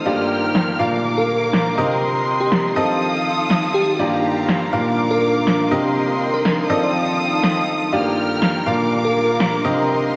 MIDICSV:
0, 0, Header, 1, 6, 480
1, 0, Start_track
1, 0, Tempo, 491803
1, 56, Time_signature, 4, 2, 24, 8
1, 9917, End_track
2, 0, Start_track
2, 0, Title_t, "Ambient pad"
2, 0, Program_c, 0, 92
2, 0, Note_on_c, 0, 77, 83
2, 0, Note_on_c, 0, 84, 78
2, 56, Note_on_c, 0, 62, 85
2, 350, Note_off_c, 0, 84, 0
2, 386, Note_on_c, 0, 82, 71
2, 944, Note_on_c, 0, 70, 73
2, 1736, Note_off_c, 0, 62, 0
2, 1739, Note_on_c, 0, 63, 74
2, 2128, Note_off_c, 0, 82, 0
2, 2130, Note_off_c, 0, 77, 0
2, 2174, Note_on_c, 0, 79, 63
2, 2175, Note_on_c, 0, 84, 79
2, 2695, Note_off_c, 0, 70, 0
2, 2957, Note_on_c, 0, 69, 62
2, 3113, Note_on_c, 0, 77, 71
2, 3177, Note_off_c, 0, 79, 0
2, 3892, Note_on_c, 0, 62, 81
2, 3896, Note_off_c, 0, 69, 0
2, 3898, Note_off_c, 0, 63, 0
2, 4190, Note_off_c, 0, 84, 0
2, 4229, Note_on_c, 0, 82, 86
2, 4707, Note_on_c, 0, 70, 80
2, 5574, Note_off_c, 0, 62, 0
2, 5576, Note_on_c, 0, 63, 86
2, 5969, Note_off_c, 0, 77, 0
2, 5970, Note_off_c, 0, 82, 0
2, 5974, Note_on_c, 0, 84, 67
2, 6015, Note_on_c, 0, 79, 83
2, 6538, Note_off_c, 0, 70, 0
2, 6736, Note_on_c, 0, 69, 69
2, 6959, Note_on_c, 0, 77, 67
2, 7017, Note_off_c, 0, 79, 0
2, 7734, Note_on_c, 0, 62, 71
2, 7736, Note_off_c, 0, 63, 0
2, 7737, Note_off_c, 0, 69, 0
2, 7930, Note_on_c, 0, 82, 71
2, 8028, Note_off_c, 0, 84, 0
2, 8892, Note_on_c, 0, 70, 76
2, 9415, Note_off_c, 0, 62, 0
2, 9415, Note_on_c, 0, 63, 85
2, 9808, Note_off_c, 0, 77, 0
2, 9810, Note_off_c, 0, 82, 0
2, 9834, Note_on_c, 0, 79, 75
2, 9855, Note_on_c, 0, 84, 68
2, 9917, Note_off_c, 0, 63, 0
2, 9917, Note_off_c, 0, 70, 0
2, 9917, Note_off_c, 0, 79, 0
2, 9917, Note_off_c, 0, 84, 0
2, 9917, End_track
3, 0, Start_track
3, 0, Title_t, "String section"
3, 0, Program_c, 1, 48
3, 55, Note_on_c, 1, 89, 78
3, 56, Note_on_c, 1, 70, 70
3, 56, Note_on_c, 1, 79, 64
3, 764, Note_off_c, 1, 70, 0
3, 768, Note_off_c, 1, 89, 0
3, 769, Note_off_c, 1, 79, 0
3, 775, Note_on_c, 1, 70, 73
3, 775, Note_on_c, 1, 86, 76
3, 776, Note_on_c, 1, 77, 63
3, 1726, Note_off_c, 1, 77, 0
3, 1726, Note_off_c, 1, 86, 0
3, 1736, Note_on_c, 1, 75, 64
3, 1736, Note_on_c, 1, 84, 79
3, 2676, Note_off_c, 1, 70, 0
3, 2686, Note_off_c, 1, 75, 0
3, 2686, Note_off_c, 1, 84, 0
3, 2694, Note_on_c, 1, 69, 73
3, 2695, Note_on_c, 1, 77, 68
3, 2695, Note_on_c, 1, 87, 83
3, 3883, Note_off_c, 1, 69, 0
3, 3883, Note_off_c, 1, 77, 0
3, 3883, Note_off_c, 1, 87, 0
3, 3896, Note_on_c, 1, 67, 70
3, 3897, Note_on_c, 1, 77, 64
3, 3897, Note_on_c, 1, 82, 77
3, 4605, Note_off_c, 1, 77, 0
3, 4609, Note_off_c, 1, 67, 0
3, 4609, Note_off_c, 1, 82, 0
3, 4616, Note_on_c, 1, 70, 69
3, 4616, Note_on_c, 1, 77, 66
3, 4616, Note_on_c, 1, 86, 79
3, 5562, Note_off_c, 1, 70, 0
3, 5566, Note_off_c, 1, 77, 0
3, 5566, Note_off_c, 1, 86, 0
3, 5574, Note_on_c, 1, 70, 71
3, 5574, Note_on_c, 1, 84, 78
3, 5575, Note_on_c, 1, 75, 66
3, 6525, Note_off_c, 1, 70, 0
3, 6525, Note_off_c, 1, 84, 0
3, 6526, Note_off_c, 1, 75, 0
3, 6535, Note_on_c, 1, 69, 74
3, 6535, Note_on_c, 1, 77, 66
3, 6535, Note_on_c, 1, 87, 83
3, 7723, Note_off_c, 1, 69, 0
3, 7723, Note_off_c, 1, 77, 0
3, 7723, Note_off_c, 1, 87, 0
3, 7735, Note_on_c, 1, 79, 64
3, 7735, Note_on_c, 1, 89, 76
3, 7736, Note_on_c, 1, 70, 70
3, 8444, Note_off_c, 1, 70, 0
3, 8448, Note_off_c, 1, 79, 0
3, 8448, Note_off_c, 1, 89, 0
3, 8455, Note_on_c, 1, 77, 67
3, 8456, Note_on_c, 1, 70, 76
3, 8456, Note_on_c, 1, 86, 81
3, 9406, Note_off_c, 1, 77, 0
3, 9406, Note_off_c, 1, 86, 0
3, 9417, Note_on_c, 1, 75, 66
3, 9417, Note_on_c, 1, 84, 79
3, 9917, Note_off_c, 1, 70, 0
3, 9917, Note_off_c, 1, 75, 0
3, 9917, Note_off_c, 1, 84, 0
3, 9917, End_track
4, 0, Start_track
4, 0, Title_t, "FM electric piano"
4, 0, Program_c, 2, 5
4, 1147, Note_on_c, 2, 70, 86
4, 1628, Note_off_c, 2, 70, 0
4, 2347, Note_on_c, 2, 67, 82
4, 2748, Note_off_c, 2, 67, 0
4, 3654, Note_on_c, 2, 67, 88
4, 3948, Note_off_c, 2, 67, 0
4, 4985, Note_on_c, 2, 70, 87
4, 5467, Note_off_c, 2, 70, 0
4, 6186, Note_on_c, 2, 70, 81
4, 6256, Note_off_c, 2, 70, 0
4, 6295, Note_on_c, 2, 70, 72
4, 6380, Note_off_c, 2, 70, 0
4, 6536, Note_on_c, 2, 74, 80
4, 6621, Note_off_c, 2, 74, 0
4, 6669, Note_on_c, 2, 74, 72
4, 6737, Note_off_c, 2, 74, 0
4, 8829, Note_on_c, 2, 70, 81
4, 9308, Note_off_c, 2, 70, 0
4, 9917, End_track
5, 0, Start_track
5, 0, Title_t, "Upright piano"
5, 0, Program_c, 3, 0
5, 56, Note_on_c, 3, 43, 72
5, 56, Note_on_c, 3, 58, 66
5, 56, Note_on_c, 3, 65, 63
5, 56, Note_on_c, 3, 67, 64
5, 56, Note_on_c, 3, 74, 77
5, 750, Note_off_c, 3, 43, 0
5, 750, Note_off_c, 3, 58, 0
5, 750, Note_off_c, 3, 65, 0
5, 750, Note_off_c, 3, 67, 0
5, 750, Note_off_c, 3, 74, 0
5, 774, Note_on_c, 3, 46, 72
5, 774, Note_on_c, 3, 62, 63
5, 774, Note_on_c, 3, 65, 65
5, 774, Note_on_c, 3, 70, 66
5, 774, Note_on_c, 3, 77, 77
5, 1709, Note_off_c, 3, 46, 0
5, 1709, Note_off_c, 3, 62, 0
5, 1709, Note_off_c, 3, 65, 0
5, 1709, Note_off_c, 3, 70, 0
5, 1709, Note_off_c, 3, 77, 0
5, 1735, Note_on_c, 3, 48, 72
5, 1735, Note_on_c, 3, 60, 68
5, 1735, Note_on_c, 3, 67, 65
5, 1735, Note_on_c, 3, 70, 66
5, 1735, Note_on_c, 3, 75, 80
5, 2669, Note_off_c, 3, 70, 0
5, 2669, Note_off_c, 3, 75, 0
5, 2670, Note_off_c, 3, 48, 0
5, 2670, Note_off_c, 3, 60, 0
5, 2670, Note_off_c, 3, 67, 0
5, 2696, Note_on_c, 3, 53, 72
5, 2696, Note_on_c, 3, 60, 64
5, 2696, Note_on_c, 3, 65, 65
5, 2696, Note_on_c, 3, 69, 67
5, 2696, Note_on_c, 3, 75, 79
5, 3870, Note_off_c, 3, 53, 0
5, 3870, Note_off_c, 3, 60, 0
5, 3870, Note_off_c, 3, 65, 0
5, 3870, Note_off_c, 3, 69, 0
5, 3870, Note_off_c, 3, 75, 0
5, 3896, Note_on_c, 3, 43, 73
5, 3896, Note_on_c, 3, 58, 62
5, 3896, Note_on_c, 3, 65, 65
5, 3896, Note_on_c, 3, 74, 80
5, 3897, Note_on_c, 3, 67, 64
5, 4590, Note_off_c, 3, 43, 0
5, 4590, Note_off_c, 3, 58, 0
5, 4590, Note_off_c, 3, 65, 0
5, 4590, Note_off_c, 3, 67, 0
5, 4590, Note_off_c, 3, 74, 0
5, 4615, Note_on_c, 3, 46, 74
5, 4615, Note_on_c, 3, 62, 66
5, 4615, Note_on_c, 3, 65, 64
5, 4615, Note_on_c, 3, 77, 81
5, 4616, Note_on_c, 3, 70, 67
5, 5549, Note_off_c, 3, 62, 0
5, 5549, Note_off_c, 3, 77, 0
5, 5550, Note_off_c, 3, 46, 0
5, 5550, Note_off_c, 3, 65, 0
5, 5550, Note_off_c, 3, 70, 0
5, 5575, Note_on_c, 3, 48, 72
5, 5575, Note_on_c, 3, 60, 68
5, 5575, Note_on_c, 3, 67, 68
5, 5575, Note_on_c, 3, 70, 67
5, 5576, Note_on_c, 3, 75, 81
5, 6510, Note_off_c, 3, 48, 0
5, 6510, Note_off_c, 3, 60, 0
5, 6510, Note_off_c, 3, 67, 0
5, 6510, Note_off_c, 3, 70, 0
5, 6510, Note_off_c, 3, 75, 0
5, 6536, Note_on_c, 3, 53, 70
5, 6536, Note_on_c, 3, 60, 67
5, 6536, Note_on_c, 3, 65, 66
5, 6536, Note_on_c, 3, 69, 66
5, 6536, Note_on_c, 3, 75, 80
5, 7710, Note_off_c, 3, 53, 0
5, 7710, Note_off_c, 3, 60, 0
5, 7710, Note_off_c, 3, 65, 0
5, 7710, Note_off_c, 3, 69, 0
5, 7710, Note_off_c, 3, 75, 0
5, 7736, Note_on_c, 3, 43, 72
5, 7736, Note_on_c, 3, 58, 65
5, 7736, Note_on_c, 3, 65, 63
5, 7736, Note_on_c, 3, 67, 64
5, 7736, Note_on_c, 3, 74, 79
5, 8430, Note_off_c, 3, 43, 0
5, 8430, Note_off_c, 3, 58, 0
5, 8430, Note_off_c, 3, 65, 0
5, 8430, Note_off_c, 3, 67, 0
5, 8430, Note_off_c, 3, 74, 0
5, 8455, Note_on_c, 3, 46, 71
5, 8455, Note_on_c, 3, 65, 66
5, 8455, Note_on_c, 3, 70, 67
5, 8456, Note_on_c, 3, 62, 65
5, 8456, Note_on_c, 3, 77, 80
5, 9390, Note_off_c, 3, 46, 0
5, 9390, Note_off_c, 3, 62, 0
5, 9390, Note_off_c, 3, 65, 0
5, 9390, Note_off_c, 3, 70, 0
5, 9390, Note_off_c, 3, 77, 0
5, 9415, Note_on_c, 3, 48, 72
5, 9415, Note_on_c, 3, 60, 66
5, 9415, Note_on_c, 3, 67, 66
5, 9415, Note_on_c, 3, 70, 68
5, 9415, Note_on_c, 3, 75, 79
5, 9917, Note_off_c, 3, 48, 0
5, 9917, Note_off_c, 3, 60, 0
5, 9917, Note_off_c, 3, 67, 0
5, 9917, Note_off_c, 3, 70, 0
5, 9917, Note_off_c, 3, 75, 0
5, 9917, End_track
6, 0, Start_track
6, 0, Title_t, "Drums"
6, 535, Note_on_c, 9, 38, 115
6, 633, Note_off_c, 9, 38, 0
6, 1496, Note_on_c, 9, 38, 116
6, 1594, Note_off_c, 9, 38, 0
6, 2457, Note_on_c, 9, 38, 115
6, 2555, Note_off_c, 9, 38, 0
6, 3417, Note_on_c, 9, 38, 117
6, 3515, Note_off_c, 9, 38, 0
6, 4377, Note_on_c, 9, 38, 109
6, 4475, Note_off_c, 9, 38, 0
6, 5338, Note_on_c, 9, 38, 117
6, 5435, Note_off_c, 9, 38, 0
6, 6296, Note_on_c, 9, 38, 106
6, 6394, Note_off_c, 9, 38, 0
6, 7256, Note_on_c, 9, 38, 111
6, 7354, Note_off_c, 9, 38, 0
6, 8217, Note_on_c, 9, 38, 105
6, 8314, Note_off_c, 9, 38, 0
6, 9176, Note_on_c, 9, 38, 105
6, 9274, Note_off_c, 9, 38, 0
6, 9917, End_track
0, 0, End_of_file